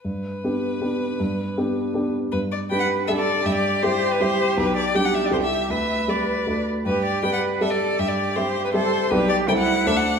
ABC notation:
X:1
M:3/4
L:1/16
Q:1/4=159
K:G
V:1 name="Violin"
B12- | B8- B2 z2 | B2 d2 g f3 e d3 | e d3 c3 B c4 |
B2 d2 g f e d c e3 | e4 d6 z2 | B2 d2 g f3 e d3 | e d3 c3 B c4 |
B2 d2 g f3 e f3 |]
V:2 name="Cello"
z12 | z12 | z4 B4 A4 | G12- |
G4 G8 | B8- B2 z2 | G4 B4 A4 | G8 A4 |
G4 E4 D4 |]
V:3 name="Grand piano"
G,,4 [B,DG]4 [B,DG]4 | G,,4 [B,DG]4 [B,DG]4 | G,,4 [G,DG]4 [G,DG]4 | G,,4 [G,EG]4 [G,EG]4 |
B,,,4 [G,DG]4 [C,,G,EA]4 | D,,4 [G,GB]4 [D,,A,Fd]4 | G,,4 [G,Gd]4 [G,Gd]4 | G,,4 [G,Ge]4 [G,Ge]4 |
[B,,,G,Gd]4 [C,,A,Ec]4 [D,,A,Dc]4 |]